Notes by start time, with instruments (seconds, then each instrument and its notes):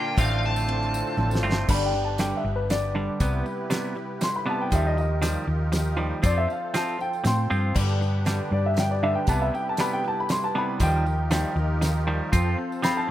Already playing: clean electric guitar A#2 D3 A#3 D4 F4, steel-string acoustic guitar F3 A#3 D4 A#4, accordion D4 F4 A#4 D5, lead electric guitar G5
0.17 fingered electric bass A1, steel-string acoustic guitar A2 D3 F3 C4 D4 A4, clean electric guitar A2 D3 A3 C4 F4, accordion D4 F4 A4 C5, lead electric guitar F5, kick, ride, tambourine
0.43 lead electric guitar A5, tambourine
0.56 tambourine
0.67 steel-string acoustic guitar F3 C4 D4 A4, ride
0.83 tambourine
0.94 tambourine
1.07 tambourine
1.17 fingered electric bass A1, steel-string acoustic guitar F3 C4 D4 A4, high tom
1.31 tambourine
1.35 snare
1.43 fingered electric bass G1, clean electric guitar A2 D3 A3 C4 F4, tambourine
1.52 snare
1.68 fingered electric bass G1, clean electric guitar G2 D3 G3, steel-string acoustic guitar G2 D3 G3 B3 D4 G4, accordion B3 D4 G4 B4, upright piano B5, kick, crash, tambourine
1.86 upright piano G5
1.94 clean electric guitar G2 D3, tambourine
2.05 upright piano A5
2.18 clean electric guitar G2 D3 G3, steel-string acoustic guitar G3 B3 D4 G4, upright piano G5, snare, closed hi-hat, tambourine
2.37 upright piano E5
2.44 fingered electric bass G1, clean electric guitar G2 D3
2.56 upright piano B4
2.69 clean electric guitar G2 D3, steel-string acoustic guitar G3 B3 D4 G4, upright piano D5, snare, closed hi-hat, tambourine
2.95 clean electric guitar G2 D3 G3
3.20 fingered electric bass C2, steel-string acoustic guitar C3 G3 B3 E4 G4, clean electric guitar C3 G3 B3, accordion B3 E4 G4 B4, kick, closed hi-hat, tambourine
3.46 clean electric guitar C3 G3, tambourine
3.70 clean electric guitar C3 G3 B3, steel-string acoustic guitar G3 B3 E4 G4, snare, closed hi-hat, tambourine
3.95 clean electric guitar C3 G3, steel-string acoustic guitar B3 E4 G4
4.21 clean electric guitar C3 G3, steel-string acoustic guitar G3 B3 E4 G4, upright piano C6, snare, closed hi-hat, tambourine
4.36 upright piano B5
4.46 clean electric guitar C3 G3 B3, steel-string acoustic guitar B3 E4 G4, upright piano A5
4.61 upright piano G5
4.69 fingered electric bass D#2, steel-string acoustic guitar D#3 F3 A#3 G4, clean electric guitar D#3 F3, accordion D#4 F4 G4 A#4, kick, closed hi-hat, tambourine
4.73 clean electric guitar G3, steel-string acoustic guitar D#4, upright piano E5
4.87 upright piano D#5
4.97 clean electric guitar D#3 F3, upright piano D#5, tambourine
5.21 clean electric guitar D#3 F3 G3, steel-string acoustic guitar F3 A#3 D#4 G4, snare, closed hi-hat, tambourine
5.47 fingered electric bass D#2, clean electric guitar D#3 F3
5.72 clean electric guitar D#3 F3, steel-string acoustic guitar F3 A#3 D#4 G4, snare, closed hi-hat, tambourine
5.96 clean electric guitar D#3 F3 G3, steel-string acoustic guitar A#3 D#4 G4
6.22 fingered electric bass F2, clean electric guitar F3 C4 F4, steel-string acoustic guitar F3 C4 F4 A4, accordion C4 F4 A4 C5, upright piano D5, kick, closed hi-hat, tambourine
6.38 upright piano E5
6.48 clean electric guitar F3 C4, upright piano F5, tambourine
6.74 steel-string acoustic guitar F3 C4 F4 A4, clean electric guitar F3 C4 F4, upright piano A5, snare, closed hi-hat, tambourine
6.88 tambourine
6.99 clean electric guitar F3 C4, upright piano G5, tambourine
7.13 tambourine
7.24 fingered electric bass A2, clean electric guitar F3 C4, steel-string acoustic guitar F3 C4 F4 A4, upright piano G5 C6, snare, closed hi-hat, tambourine
7.50 fingered electric bass G2, clean electric guitar F3 C4 F4, tambourine
7.75 steel-string acoustic guitar G2 D3 G3 B3 D4 G4, clean electric guitar G2 D3 G3, fingered electric bass G2, accordion B3 D4 G4 B4, kick, tambourine, crash
8.01 clean electric guitar G2 D3, tambourine
8.25 clean electric guitar G2 D3 G3, steel-string acoustic guitar G3 B3 D4 G4, snare, closed hi-hat, tambourine
8.51 fingered electric bass G2, clean electric guitar G2 D3, upright piano D5
8.66 upright piano E5
8.74 clean electric guitar G2 D3, steel-string acoustic guitar G3 B3 D4 G4, snare, closed hi-hat
8.78 upright piano G5, tambourine
8.91 upright piano D5
9.03 clean electric guitar G2 D3 G3, upright piano E5
9.15 upright piano G5
9.27 fingered electric bass C2, steel-string acoustic guitar C3 G3 B3 E4 G4, clean electric guitar C3 G3 B3, accordion B3 E4 G4 B4, upright piano A5, kick, closed hi-hat, tambourine
9.42 upright piano E5
9.54 clean electric guitar C3 G3, upright piano G5, tambourine
9.69 upright piano A5
9.77 clean electric guitar C3 G3 B3, steel-string acoustic guitar G3 B3 E4 G4, upright piano B5, snare, closed hi-hat, tambourine
9.93 upright piano G5
10.04 clean electric guitar C3 G3, steel-string acoustic guitar B3 E4 G4, upright piano A5
10.20 upright piano B5
10.29 clean electric guitar C3 G3, steel-string acoustic guitar G3 B3 E4 G4, upright piano C6, snare, closed hi-hat, tambourine
10.44 upright piano A5
10.55 clean electric guitar C3 G3 B3, steel-string acoustic guitar B3 E4 G4, upright piano B5
10.80 fingered electric bass D#2, clean electric guitar D#3 F3 G3, steel-string acoustic guitar D#3 F3 A#3 D#4 G4, accordion D#4 F4 G4 A#4, upright piano G5, kick, closed hi-hat, tambourine
11.06 clean electric guitar D#3 F3, tambourine
11.30 clean electric guitar D#3 F3 G3, steel-string acoustic guitar F3 A#3 D#4 G4, snare, closed hi-hat, tambourine
11.56 fingered electric bass D#2, clean electric guitar D#3 F3, steel-string acoustic guitar A#3 D#4 G4
11.81 clean electric guitar D#3 F3, steel-string acoustic guitar F3 A#3, snare, closed hi-hat, tambourine
11.85 steel-string acoustic guitar D#4 G4
12.07 clean electric guitar D#3 F3 G3
12.32 fingered electric bass F2, clean electric guitar F3 C4 F4, steel-string acoustic guitar F3 C4 F4 A4, accordion C4 F4 A4 C5, kick, closed hi-hat, tambourine
12.58 clean electric guitar F3 C4
12.72 tambourine
12.82 clean electric guitar F3 C4 F4, steel-string acoustic guitar F3 C4 F4 A4, upright piano B5, snare, closed hi-hat, tambourine
12.97 upright piano A5